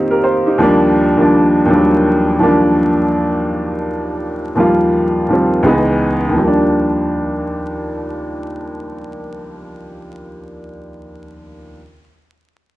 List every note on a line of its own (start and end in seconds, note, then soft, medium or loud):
0.00 0.18 D#3 medium
0.00 0.19 A#3 medium
0.00 0.19 C4 medium
0.00 0.47 D#4 medium
0.00 0.60 F4 medium
0.00 0.11 G4 medium
0.11 0.23 G4 medium
0.11 0.22 A#4 medium
0.24 0.45 C5 medium
0.47 0.81 D#4 medium
0.47 0.80 G4 medium
0.58 1.13 D#2 medium
0.58 1.13 F3 medium
0.58 1.14 G3 medium
0.58 1.14 A#3 medium
0.63 1.15 D4 loud
1.17 1.64 D#2 medium
1.17 1.64 F3 medium
1.17 1.65 G3 medium
1.17 1.65 A#3 medium
1.21 1.66 D4 medium
1.66 2.35 D#2 medium
1.66 2.35 F3 medium
1.66 1.76 F#3 medium
1.66 2.37 A#3 medium
1.70 2.37 D4 medium
1.74 2.39 G3 medium
2.39 3.76 D#2 medium
2.39 3.77 F3 medium
2.39 3.77 G3 medium
2.39 3.78 A#3 medium
2.43 3.79 D4 medium
4.55 5.24 D#2 medium
4.55 5.25 F3 medium
4.55 5.25 G3 medium
4.55 5.26 A#3 medium
4.60 5.27 F4 medium
5.28 5.64 D#2 medium
5.28 5.65 F3 medium
5.28 5.66 G3 medium
5.28 5.66 A#3 soft
5.33 5.67 C4 medium
5.63 6.32 C#2 medium
5.63 6.33 E3 medium
5.63 6.33 G#3 medium
5.63 6.34 B3 medium
5.68 6.35 D#4 medium
6.29 10.62 D#2 medium
6.34 10.67 F3 medium
6.38 10.71 G3 medium
6.43 10.75 A#3 medium
6.47 10.77 D4 medium